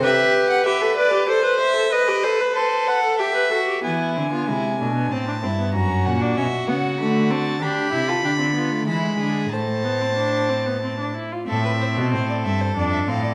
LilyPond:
<<
  \new Staff \with { instrumentName = "Violin" } { \time 3/4 \key a \minor \tempo 4 = 95 e''8. fis''16 e''8 d''8 c''8 e''8 | dis''8 c''8 b'8 fis''8 e''4 | gis''8 gis''4. a''4 | ais''8 fis''16 d''16 e''8 fis''8 b''8 a''8 |
b''2 b''4 | a''2~ a''8 r8 | e''4 c''16 d''16 e''16 c''16 d''16 e''16 f''16 d''16 | }
  \new Staff \with { instrumentName = "Violin" } { \time 3/4 \key a \minor g'4 b'4 c''4 | b'4 a'4 g'8 fis'8 | e'8. f'16 e'8 d'8 c'8 e'8 | fis'2. |
g'8. a'16 g'8 f'8 e'8 gis'8 | c''2~ c''8 r8 | a'16 b'16 c''16 a'2~ a'16 | }
  \new Staff \with { instrumentName = "Viola" } { \time 3/4 \key a \minor b'4 g'16 a'16 b'16 g'16 a'16 b'16 c''16 a'16 | b'16 g'16 a'16 b'16 c''8 b'16 a'16 g'16 b'16 a'16 g'16 | b8 c'16 b16 gis8 a16 b16 c'16 d'16 c'16 b16 | cis'8. d'16 cis'8 b8 a8 c'8 |
d'8 e'16 f'16 d'16 c'16 b16 a16 gis4 | a8 b16 c'16 d'8 c'16 b16 c'16 d'16 e'16 f'16 | c'2 d'8 c'8 | }
  \new Staff \with { instrumentName = "Cello" } { \clef bass \time 3/4 \key a \minor r2. | r2. | e8 d8 c8 b,8 a,8 g,8 | fis,8 ais,8 b,8 cis8 d4 |
d8 c8 d4 e8 d8 | a,2~ a,8 r8 | a,8. b,16 a,8 g,8 f,8 a,8 | }
>>